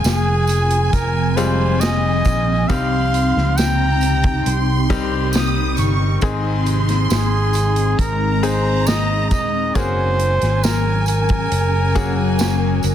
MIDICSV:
0, 0, Header, 1, 7, 480
1, 0, Start_track
1, 0, Key_signature, -4, "major"
1, 0, Tempo, 882353
1, 1467, Time_signature, 4, 2, 24, 8
1, 7044, End_track
2, 0, Start_track
2, 0, Title_t, "Violin section"
2, 0, Program_c, 0, 48
2, 0, Note_on_c, 0, 80, 104
2, 1466, Note_off_c, 0, 80, 0
2, 1470, Note_on_c, 0, 84, 101
2, 1948, Note_off_c, 0, 84, 0
2, 1951, Note_on_c, 0, 82, 102
2, 2407, Note_off_c, 0, 82, 0
2, 2431, Note_on_c, 0, 84, 106
2, 2906, Note_on_c, 0, 87, 105
2, 2909, Note_off_c, 0, 84, 0
2, 3130, Note_off_c, 0, 87, 0
2, 3145, Note_on_c, 0, 85, 97
2, 3386, Note_off_c, 0, 85, 0
2, 3388, Note_on_c, 0, 84, 98
2, 4326, Note_off_c, 0, 84, 0
2, 4347, Note_on_c, 0, 82, 106
2, 5285, Note_off_c, 0, 82, 0
2, 5308, Note_on_c, 0, 80, 102
2, 7044, Note_off_c, 0, 80, 0
2, 7044, End_track
3, 0, Start_track
3, 0, Title_t, "Flugelhorn"
3, 0, Program_c, 1, 56
3, 29, Note_on_c, 1, 68, 89
3, 486, Note_off_c, 1, 68, 0
3, 508, Note_on_c, 1, 70, 87
3, 741, Note_on_c, 1, 72, 89
3, 749, Note_off_c, 1, 70, 0
3, 979, Note_on_c, 1, 75, 108
3, 987, Note_off_c, 1, 72, 0
3, 1459, Note_on_c, 1, 77, 114
3, 1468, Note_off_c, 1, 75, 0
3, 1942, Note_on_c, 1, 79, 110
3, 1950, Note_off_c, 1, 77, 0
3, 2904, Note_off_c, 1, 79, 0
3, 3870, Note_on_c, 1, 68, 91
3, 4347, Note_on_c, 1, 70, 95
3, 4355, Note_off_c, 1, 68, 0
3, 4587, Note_on_c, 1, 72, 94
3, 4595, Note_off_c, 1, 70, 0
3, 4826, Note_on_c, 1, 75, 103
3, 4834, Note_off_c, 1, 72, 0
3, 5061, Note_off_c, 1, 75, 0
3, 5064, Note_on_c, 1, 75, 97
3, 5306, Note_on_c, 1, 72, 109
3, 5314, Note_off_c, 1, 75, 0
3, 5788, Note_on_c, 1, 70, 92
3, 5796, Note_off_c, 1, 72, 0
3, 6022, Note_off_c, 1, 70, 0
3, 6025, Note_on_c, 1, 70, 94
3, 6964, Note_off_c, 1, 70, 0
3, 7044, End_track
4, 0, Start_track
4, 0, Title_t, "Ambient pad"
4, 0, Program_c, 2, 92
4, 0, Note_on_c, 2, 53, 73
4, 0, Note_on_c, 2, 60, 69
4, 0, Note_on_c, 2, 65, 84
4, 498, Note_off_c, 2, 65, 0
4, 513, Note_on_c, 2, 63, 84
4, 1450, Note_off_c, 2, 53, 0
4, 1463, Note_on_c, 2, 67, 84
4, 1467, Note_on_c, 2, 48, 75
4, 3366, Note_off_c, 2, 67, 0
4, 3368, Note_off_c, 2, 48, 0
4, 3383, Note_on_c, 2, 56, 74
4, 5286, Note_off_c, 2, 56, 0
4, 5287, Note_off_c, 2, 60, 0
4, 5288, Note_off_c, 2, 63, 0
4, 5301, Note_on_c, 2, 54, 75
4, 5301, Note_on_c, 2, 61, 66
4, 5302, Note_on_c, 2, 70, 88
4, 5304, Note_on_c, 2, 68, 70
4, 6256, Note_off_c, 2, 68, 0
4, 6266, Note_on_c, 2, 66, 77
4, 7044, Note_off_c, 2, 54, 0
4, 7044, Note_off_c, 2, 61, 0
4, 7044, Note_off_c, 2, 66, 0
4, 7044, Note_off_c, 2, 70, 0
4, 7044, End_track
5, 0, Start_track
5, 0, Title_t, "Grand piano"
5, 0, Program_c, 3, 0
5, 0, Control_c, 3, 64, 127
5, 0, Note_on_c, 3, 56, 85
5, 0, Note_on_c, 3, 60, 72
5, 0, Note_on_c, 3, 65, 78
5, 0, Note_on_c, 3, 68, 95
5, 456, Note_off_c, 3, 56, 0
5, 456, Note_off_c, 3, 65, 0
5, 457, Note_off_c, 3, 60, 0
5, 458, Note_off_c, 3, 68, 0
5, 745, Note_on_c, 3, 56, 75
5, 745, Note_on_c, 3, 60, 70
5, 746, Note_on_c, 3, 65, 73
5, 748, Note_on_c, 3, 55, 81
5, 1430, Note_off_c, 3, 56, 0
5, 1430, Note_off_c, 3, 60, 0
5, 1430, Note_off_c, 3, 65, 0
5, 1431, Note_off_c, 3, 55, 0
5, 1466, Note_on_c, 3, 63, 64
5, 1467, Note_on_c, 3, 48, 64
5, 1467, Note_on_c, 3, 55, 73
5, 1467, Note_on_c, 3, 60, 65
5, 1468, Note_on_c, 3, 67, 76
5, 1474, Control_c, 3, 64, 0
5, 1562, Control_c, 3, 64, 127
5, 2165, Note_off_c, 3, 48, 0
5, 2378, Note_off_c, 3, 63, 0
5, 2379, Note_off_c, 3, 55, 0
5, 2379, Note_off_c, 3, 60, 0
5, 2379, Note_off_c, 3, 67, 0
5, 2665, Note_on_c, 3, 55, 92
5, 2666, Note_on_c, 3, 60, 82
5, 2667, Note_on_c, 3, 63, 82
5, 2667, Note_on_c, 3, 67, 93
5, 3350, Note_off_c, 3, 55, 0
5, 3350, Note_off_c, 3, 60, 0
5, 3351, Note_off_c, 3, 63, 0
5, 3351, Note_off_c, 3, 67, 0
5, 3385, Note_on_c, 3, 44, 75
5, 3386, Note_on_c, 3, 56, 83
5, 3387, Note_on_c, 3, 60, 78
5, 3388, Note_on_c, 3, 63, 73
5, 3390, Note_on_c, 3, 68, 91
5, 3393, Control_c, 3, 64, 0
5, 3482, Control_c, 3, 64, 127
5, 4084, Note_off_c, 3, 44, 0
5, 4298, Note_off_c, 3, 56, 0
5, 4299, Note_off_c, 3, 60, 0
5, 4299, Note_off_c, 3, 63, 0
5, 4300, Note_off_c, 3, 68, 0
5, 4585, Note_on_c, 3, 56, 74
5, 4585, Note_on_c, 3, 60, 68
5, 4586, Note_on_c, 3, 63, 69
5, 4587, Note_on_c, 3, 68, 82
5, 5270, Note_off_c, 3, 56, 0
5, 5270, Note_off_c, 3, 60, 0
5, 5270, Note_off_c, 3, 63, 0
5, 5271, Note_off_c, 3, 68, 0
5, 5305, Note_on_c, 3, 58, 71
5, 5307, Note_on_c, 3, 61, 64
5, 5308, Note_on_c, 3, 66, 66
5, 5308, Note_on_c, 3, 68, 80
5, 5313, Control_c, 3, 64, 0
5, 5400, Control_c, 3, 64, 127
5, 6218, Note_off_c, 3, 58, 0
5, 6219, Note_off_c, 3, 61, 0
5, 6219, Note_off_c, 3, 66, 0
5, 6219, Note_off_c, 3, 68, 0
5, 6500, Note_on_c, 3, 58, 71
5, 6502, Note_on_c, 3, 61, 68
5, 6503, Note_on_c, 3, 66, 68
5, 6503, Note_on_c, 3, 68, 90
5, 7044, Note_off_c, 3, 58, 0
5, 7044, Note_off_c, 3, 61, 0
5, 7044, Note_off_c, 3, 66, 0
5, 7044, Note_off_c, 3, 68, 0
5, 7044, End_track
6, 0, Start_track
6, 0, Title_t, "Fingered electric bass"
6, 0, Program_c, 4, 33
6, 24, Note_on_c, 4, 29, 96
6, 484, Note_off_c, 4, 29, 0
6, 507, Note_on_c, 4, 29, 90
6, 1205, Note_off_c, 4, 29, 0
6, 1227, Note_on_c, 4, 34, 93
6, 1450, Note_off_c, 4, 34, 0
6, 1467, Note_on_c, 4, 36, 101
6, 1805, Note_off_c, 4, 36, 0
6, 1829, Note_on_c, 4, 37, 89
6, 2406, Note_off_c, 4, 37, 0
6, 2427, Note_on_c, 4, 36, 92
6, 3125, Note_off_c, 4, 36, 0
6, 3147, Note_on_c, 4, 31, 88
6, 3370, Note_off_c, 4, 31, 0
6, 3385, Note_on_c, 4, 32, 102
6, 3844, Note_off_c, 4, 32, 0
6, 3866, Note_on_c, 4, 32, 85
6, 4325, Note_off_c, 4, 32, 0
6, 4345, Note_on_c, 4, 32, 86
6, 5068, Note_off_c, 4, 32, 0
6, 5068, Note_on_c, 4, 27, 79
6, 5290, Note_off_c, 4, 27, 0
6, 5306, Note_on_c, 4, 30, 100
6, 5645, Note_off_c, 4, 30, 0
6, 5669, Note_on_c, 4, 32, 79
6, 6246, Note_off_c, 4, 32, 0
6, 6265, Note_on_c, 4, 30, 95
6, 6964, Note_off_c, 4, 30, 0
6, 6985, Note_on_c, 4, 30, 90
6, 7044, Note_off_c, 4, 30, 0
6, 7044, End_track
7, 0, Start_track
7, 0, Title_t, "Drums"
7, 24, Note_on_c, 9, 54, 84
7, 28, Note_on_c, 9, 42, 87
7, 33, Note_on_c, 9, 38, 95
7, 78, Note_off_c, 9, 54, 0
7, 82, Note_off_c, 9, 42, 0
7, 87, Note_off_c, 9, 38, 0
7, 258, Note_on_c, 9, 54, 47
7, 268, Note_on_c, 9, 42, 78
7, 312, Note_off_c, 9, 54, 0
7, 323, Note_off_c, 9, 42, 0
7, 384, Note_on_c, 9, 42, 58
7, 438, Note_off_c, 9, 42, 0
7, 506, Note_on_c, 9, 36, 87
7, 507, Note_on_c, 9, 42, 102
7, 509, Note_on_c, 9, 54, 30
7, 561, Note_off_c, 9, 36, 0
7, 561, Note_off_c, 9, 42, 0
7, 564, Note_off_c, 9, 54, 0
7, 747, Note_on_c, 9, 54, 45
7, 748, Note_on_c, 9, 42, 67
7, 801, Note_off_c, 9, 54, 0
7, 803, Note_off_c, 9, 42, 0
7, 985, Note_on_c, 9, 54, 83
7, 988, Note_on_c, 9, 42, 82
7, 996, Note_on_c, 9, 38, 109
7, 1039, Note_off_c, 9, 54, 0
7, 1042, Note_off_c, 9, 42, 0
7, 1051, Note_off_c, 9, 38, 0
7, 1222, Note_on_c, 9, 54, 46
7, 1226, Note_on_c, 9, 42, 66
7, 1227, Note_on_c, 9, 36, 84
7, 1277, Note_off_c, 9, 54, 0
7, 1281, Note_off_c, 9, 42, 0
7, 1282, Note_off_c, 9, 36, 0
7, 1465, Note_on_c, 9, 54, 43
7, 1467, Note_on_c, 9, 36, 105
7, 1468, Note_on_c, 9, 42, 68
7, 1520, Note_off_c, 9, 54, 0
7, 1522, Note_off_c, 9, 36, 0
7, 1523, Note_off_c, 9, 42, 0
7, 1709, Note_on_c, 9, 42, 72
7, 1763, Note_off_c, 9, 42, 0
7, 1835, Note_on_c, 9, 38, 33
7, 1889, Note_off_c, 9, 38, 0
7, 1945, Note_on_c, 9, 54, 87
7, 1949, Note_on_c, 9, 42, 89
7, 1954, Note_on_c, 9, 38, 94
7, 2000, Note_off_c, 9, 54, 0
7, 2003, Note_off_c, 9, 42, 0
7, 2009, Note_off_c, 9, 38, 0
7, 2181, Note_on_c, 9, 54, 44
7, 2191, Note_on_c, 9, 42, 81
7, 2235, Note_off_c, 9, 54, 0
7, 2245, Note_off_c, 9, 42, 0
7, 2304, Note_on_c, 9, 42, 56
7, 2307, Note_on_c, 9, 36, 98
7, 2359, Note_off_c, 9, 42, 0
7, 2362, Note_off_c, 9, 36, 0
7, 2427, Note_on_c, 9, 42, 102
7, 2482, Note_off_c, 9, 42, 0
7, 2666, Note_on_c, 9, 36, 87
7, 2667, Note_on_c, 9, 42, 66
7, 2667, Note_on_c, 9, 54, 42
7, 2720, Note_off_c, 9, 36, 0
7, 2721, Note_off_c, 9, 42, 0
7, 2721, Note_off_c, 9, 54, 0
7, 2899, Note_on_c, 9, 54, 89
7, 2905, Note_on_c, 9, 42, 78
7, 2914, Note_on_c, 9, 38, 119
7, 2953, Note_off_c, 9, 54, 0
7, 2959, Note_off_c, 9, 42, 0
7, 2968, Note_off_c, 9, 38, 0
7, 3138, Note_on_c, 9, 54, 45
7, 3144, Note_on_c, 9, 42, 72
7, 3193, Note_off_c, 9, 54, 0
7, 3199, Note_off_c, 9, 42, 0
7, 3380, Note_on_c, 9, 54, 44
7, 3383, Note_on_c, 9, 42, 70
7, 3385, Note_on_c, 9, 36, 96
7, 3435, Note_off_c, 9, 54, 0
7, 3438, Note_off_c, 9, 42, 0
7, 3440, Note_off_c, 9, 36, 0
7, 3624, Note_on_c, 9, 54, 30
7, 3626, Note_on_c, 9, 42, 69
7, 3678, Note_off_c, 9, 54, 0
7, 3681, Note_off_c, 9, 42, 0
7, 3747, Note_on_c, 9, 42, 58
7, 3754, Note_on_c, 9, 38, 33
7, 3801, Note_off_c, 9, 42, 0
7, 3808, Note_off_c, 9, 38, 0
7, 3864, Note_on_c, 9, 54, 85
7, 3866, Note_on_c, 9, 42, 88
7, 3871, Note_on_c, 9, 38, 93
7, 3918, Note_off_c, 9, 54, 0
7, 3920, Note_off_c, 9, 42, 0
7, 3925, Note_off_c, 9, 38, 0
7, 4098, Note_on_c, 9, 54, 45
7, 4108, Note_on_c, 9, 42, 82
7, 4152, Note_off_c, 9, 54, 0
7, 4162, Note_off_c, 9, 42, 0
7, 4222, Note_on_c, 9, 42, 56
7, 4277, Note_off_c, 9, 42, 0
7, 4345, Note_on_c, 9, 36, 96
7, 4346, Note_on_c, 9, 54, 31
7, 4347, Note_on_c, 9, 42, 103
7, 4400, Note_off_c, 9, 36, 0
7, 4401, Note_off_c, 9, 54, 0
7, 4402, Note_off_c, 9, 42, 0
7, 4588, Note_on_c, 9, 42, 67
7, 4589, Note_on_c, 9, 54, 42
7, 4642, Note_off_c, 9, 42, 0
7, 4643, Note_off_c, 9, 54, 0
7, 4823, Note_on_c, 9, 54, 91
7, 4824, Note_on_c, 9, 42, 78
7, 4833, Note_on_c, 9, 38, 109
7, 4878, Note_off_c, 9, 54, 0
7, 4879, Note_off_c, 9, 42, 0
7, 4887, Note_off_c, 9, 38, 0
7, 5064, Note_on_c, 9, 54, 47
7, 5065, Note_on_c, 9, 42, 69
7, 5066, Note_on_c, 9, 36, 90
7, 5118, Note_off_c, 9, 54, 0
7, 5119, Note_off_c, 9, 42, 0
7, 5120, Note_off_c, 9, 36, 0
7, 5305, Note_on_c, 9, 54, 47
7, 5306, Note_on_c, 9, 42, 73
7, 5307, Note_on_c, 9, 36, 100
7, 5360, Note_off_c, 9, 54, 0
7, 5361, Note_off_c, 9, 36, 0
7, 5361, Note_off_c, 9, 42, 0
7, 5546, Note_on_c, 9, 42, 68
7, 5601, Note_off_c, 9, 42, 0
7, 5666, Note_on_c, 9, 42, 57
7, 5673, Note_on_c, 9, 38, 33
7, 5720, Note_off_c, 9, 42, 0
7, 5728, Note_off_c, 9, 38, 0
7, 5786, Note_on_c, 9, 54, 92
7, 5787, Note_on_c, 9, 42, 85
7, 5793, Note_on_c, 9, 38, 97
7, 5840, Note_off_c, 9, 54, 0
7, 5842, Note_off_c, 9, 42, 0
7, 5847, Note_off_c, 9, 38, 0
7, 6017, Note_on_c, 9, 54, 47
7, 6028, Note_on_c, 9, 42, 88
7, 6071, Note_off_c, 9, 54, 0
7, 6082, Note_off_c, 9, 42, 0
7, 6141, Note_on_c, 9, 42, 60
7, 6147, Note_on_c, 9, 36, 102
7, 6195, Note_off_c, 9, 42, 0
7, 6201, Note_off_c, 9, 36, 0
7, 6265, Note_on_c, 9, 42, 104
7, 6320, Note_off_c, 9, 42, 0
7, 6504, Note_on_c, 9, 42, 64
7, 6505, Note_on_c, 9, 54, 45
7, 6506, Note_on_c, 9, 36, 91
7, 6558, Note_off_c, 9, 42, 0
7, 6559, Note_off_c, 9, 54, 0
7, 6561, Note_off_c, 9, 36, 0
7, 6739, Note_on_c, 9, 54, 94
7, 6743, Note_on_c, 9, 42, 79
7, 6751, Note_on_c, 9, 38, 116
7, 6794, Note_off_c, 9, 54, 0
7, 6797, Note_off_c, 9, 42, 0
7, 6806, Note_off_c, 9, 38, 0
7, 6978, Note_on_c, 9, 54, 46
7, 6985, Note_on_c, 9, 42, 74
7, 7032, Note_off_c, 9, 54, 0
7, 7039, Note_off_c, 9, 42, 0
7, 7044, End_track
0, 0, End_of_file